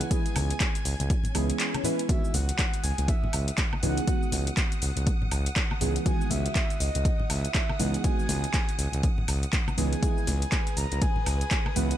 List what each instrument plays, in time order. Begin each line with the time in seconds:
Already playing: soft synth lead F#5, string machine G#5 G#6
0.01 closed hi-hat, cabasa
0.11 synth stab E3 G#3 B3 E4 G#4, soft synth lead G#5, kick, closed hi-hat, cabasa
0.26 closed hi-hat, cabasa
0.36 analog synth bass C#2, open hi-hat, high conga, cabasa, high woodblock
0.50 closed hi-hat, cabasa
0.60 kick, clap, closed hi-hat, cabasa
0.75 closed hi-hat, cabasa
0.85 analog synth bass C#2, open hi-hat, cabasa
1.00 analog synth bass C#2, closed hi-hat, high conga, cabasa
1.10 kick, closed hi-hat, swell, cabasa
1.24 closed hi-hat, low conga, cabasa
1.35 analog synth bass C#2, synth stab E3 G#3 B3 E4 G#4, open hi-hat, cabasa, high woodblock
1.50 closed hi-hat, cabasa
1.60 clap, closed hi-hat, cabasa
1.74 closed hi-hat, high conga, high woodblock
1.84 synth stab E3 G#3 B3 E4 B4, open hi-hat, low conga, cabasa
1.99 closed hi-hat, cabasa
2.09 synth stab D#3 E3 G#3 B3 F#4, soft synth lead E5, string machine F#5 D#6, kick, closed hi-hat, cabasa
2.24 cabasa
2.34 analog synth bass C#2, soft synth lead F#5, open hi-hat, high conga, cabasa
2.49 closed hi-hat, cabasa
2.59 kick, clap, closed hi-hat, cabasa
2.74 closed hi-hat, cabasa
2.83 analog synth bass C#2, soft synth lead G#5, open hi-hat, cabasa
2.98 analog synth bass C#2, closed hi-hat, high conga, cabasa
3.08 soft synth lead E5, kick, closed hi-hat, cabasa
3.24 low conga
3.33 analog synth bass C#2, open hi-hat, cabasa, high woodblock
3.48 closed hi-hat, cabasa
3.58 kick, clap, closed hi-hat, cabasa
3.73 high conga, high woodblock
3.83 analog synth bass C#2, synth stab E3 G#3 B3 D#4 G#4, soft synth lead F#5, open hi-hat, low conga, cabasa
3.97 closed hi-hat, cabasa
4.07 synth stab E3 B3 D#4 F#4, kick, closed hi-hat, cabasa
4.23 cabasa
4.32 analog synth bass C#2, open hi-hat, high conga, cabasa
4.47 closed hi-hat, cabasa
4.57 kick, clap, closed hi-hat, cabasa
4.72 closed hi-hat, cabasa
4.82 analog synth bass C#2, open hi-hat, cabasa
4.96 analog synth bass C#2, closed hi-hat, high conga, cabasa
5.07 kick, closed hi-hat, cabasa
5.22 low conga
5.31 analog synth bass C#2, open hi-hat, cabasa, high woodblock
5.46 closed hi-hat, cabasa
5.56 kick, clap, closed hi-hat, cabasa
5.71 high conga, high woodblock
5.81 analog synth bass C#2, synth stab E3 G#3 B3 D#4 G#4, open hi-hat, low conga, cabasa
5.96 closed hi-hat, cabasa
6.06 synth stab D#3 E3 G#3 B3 F#4, soft synth lead G#5, kick, closed hi-hat, cabasa
6.21 cabasa
6.30 analog synth bass C#2, soft synth lead E5, open hi-hat, high conga, cabasa
6.46 closed hi-hat, cabasa
6.55 kick, clap, closed hi-hat, cabasa
6.70 closed hi-hat, cabasa
6.80 analog synth bass C#2, soft synth lead D#5, open hi-hat, cabasa
6.95 analog synth bass C#2, closed hi-hat, high conga, cabasa
7.05 kick, closed hi-hat, cabasa
7.19 low conga
7.30 analog synth bass C#2, soft synth lead E5, open hi-hat, cabasa, high woodblock
7.45 closed hi-hat, cabasa
7.55 kick, clap, closed hi-hat, cabasa
7.69 high conga, high woodblock
7.79 analog synth bass C#2, synth stab E3 G#3 B3 D#4 G#4, soft synth lead F#5, open hi-hat, low conga, cabasa
7.94 closed hi-hat, cabasa
8.04 synth stab E3 G#3 B3 D#4 F#4, soft synth lead G#5, kick, closed hi-hat, cabasa
8.19 cabasa
8.29 analog synth bass C#2, open hi-hat, high conga, cabasa
8.44 closed hi-hat, cabasa
8.54 kick, clap, closed hi-hat, cabasa
8.69 closed hi-hat, cabasa
8.79 analog synth bass C#2, open hi-hat, cabasa
8.92 analog synth bass C#2, closed hi-hat, high conga, cabasa
9.03 kick, closed hi-hat, cabasa
9.18 low conga
9.28 analog synth bass C#2, open hi-hat, cabasa, high woodblock
9.43 closed hi-hat, cabasa
9.53 kick, clap, closed hi-hat, cabasa
9.68 high conga, cabasa, high woodblock
9.77 analog synth bass C#2, synth stab E3 G#3 B3 D#4 G#4, soft synth lead G#5, open hi-hat, low conga, cabasa
9.93 closed hi-hat, cabasa
10.02 synth stab E3 G#3 B3 E4 G#4, string machine B4 D#6, kick, closed hi-hat, cabasa
10.18 cabasa
10.27 analog synth bass C#2, open hi-hat, high conga, cabasa
10.42 closed hi-hat, cabasa
10.52 kick, clap, closed hi-hat, cabasa
10.67 closed hi-hat, cabasa
10.77 analog synth bass C#2, soft synth lead A#5, open hi-hat, cabasa
10.92 analog synth bass C#2, closed hi-hat, high conga, cabasa
11.02 soft synth lead G#5, kick, closed hi-hat, cabasa
11.16 low conga
11.26 analog synth bass C#2, open hi-hat, cabasa, high woodblock
11.41 closed hi-hat, cabasa
11.51 kick, clap, closed hi-hat, cabasa
11.66 high conga, high woodblock
11.76 analog synth bass C#2, synth stab E3 G#3 B3 E4 B4, soft synth lead F#5, open hi-hat, low conga, cabasa
11.91 closed hi-hat, cabasa